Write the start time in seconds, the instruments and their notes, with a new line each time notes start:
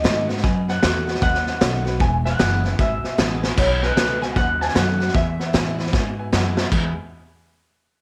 Already playing: steel-string acoustic guitar F#2, clean electric guitar D#5
0.03 upright bass G#2, steel-string acoustic guitar D#3 A3 B3 F#4, upright piano B4 G#5, snare, hi-hat pedal
0.28 steel-string acoustic guitar B3 F#4, upright piano B4 D#5 F#5, snare
0.37 snare
0.43 upright bass F#2, steel-string acoustic guitar B2, upright piano B4 D#5 G#5, kick, snare
0.68 upright piano B4 D#5 F#5, clean electric guitar F#5, snare
0.82 upright bass E2, steel-string acoustic guitar D#3 A3 B3 F#4, upright piano B4 D#5, snare, hi-hat pedal
1.07 steel-string acoustic guitar B3 F#4, upright piano B4 D#5 F#5, snare
1.15 snare
1.22 upright bass D#2, steel-string acoustic guitar F#2, upright piano B4 D#5 F#5, clean electric guitar F#5, kick, snare
1.34 snare
1.47 upright piano B4 D#5 F#5, snare
1.61 upright bass B1, steel-string acoustic guitar D#3 A3 B3 F#4, upright piano B4 F#5, snare, hi-hat pedal
1.85 steel-string acoustic guitar B3 F#4, upright piano B4 D#5 F#5, snare
2.00 upright bass E1, steel-string acoustic guitar E2, upright piano B4 E5 G#5, clean electric guitar G#5, kick, snare
2.25 upright piano B4 E5 G#5, clean electric guitar F#5, snare
2.39 upright bass F#1, steel-string acoustic guitar E3 G#3 B3 E4, upright piano B4 G#5, snare, hi-hat pedal
2.64 steel-string acoustic guitar B3 E4, upright piano B4 E5 G#5, snare
2.79 upright bass G#1, steel-string acoustic guitar B2, upright piano B4 E5 G#5, clean electric guitar E5, kick, snare
3.04 upright piano B4 E5 G#5, muted upright bass stroke, snare
3.18 upright bass A1, steel-string acoustic guitar E3 G#3 B3 E4, upright piano B4 G#5, snare, hi-hat pedal
3.43 steel-string acoustic guitar B3 E4, upright piano B4 E5 G#5, snare
3.57 upright bass B1, steel-string acoustic guitar B2, upright piano B4 D#5 F#5, clean electric guitar C#5, kick, snare, crash
3.83 upright piano B4 D#5 G#5, clean electric guitar B4, snare
3.96 upright bass C#2, steel-string acoustic guitar D#3 A3 B3 F#4, upright piano B4 G#5, snare, hi-hat pedal
4.21 steel-string acoustic guitar B3 F#4, upright piano B4 D#5 G#5, clean electric guitar G#5, snare
4.36 upright bass D#2, steel-string acoustic guitar F#2, upright piano B4 D#5 F#5, clean electric guitar F#5, kick, snare
4.61 upright piano B4 D#5 A5, clean electric guitar G#5, snare
4.68 snare
4.75 upright bass F#2, steel-string acoustic guitar D#3 A3 B3 F#4, upright piano B4 D#5 F#5, clean electric guitar F#5, snare, hi-hat pedal
5.00 steel-string acoustic guitar B3 F#4, upright piano B4 D#5 F#5, snare
5.08 snare
5.14 steel-string acoustic guitar E2, upright bass E2, upright piano B4 E5 G#5, clean electric guitar E5, kick, snare
5.40 upright piano B4 E5 F#5, snare
5.53 upright bass A2, steel-string acoustic guitar E3 G#3 B3 E4, upright piano B4 G#5, snare, hi-hat pedal
5.79 steel-string acoustic guitar B3 E4, upright piano B4 E5 B5, snare
5.86 snare
5.93 upright bass G#2, upright piano B4 E5 G#5, kick, snare
6.19 upright piano B4 E5 G#5
6.32 upright bass F#2, steel-string acoustic guitar E3 G#3 B3 E4, upright piano B4 E5 F#5, snare, hi-hat pedal
6.57 steel-string acoustic guitar B3 E4, upright piano B4 E5 B5, snare
6.72 upright bass E2, steel-string acoustic guitar E2 B2 E3 G#3 B3 E4, upright piano B4 G#5, kick, crash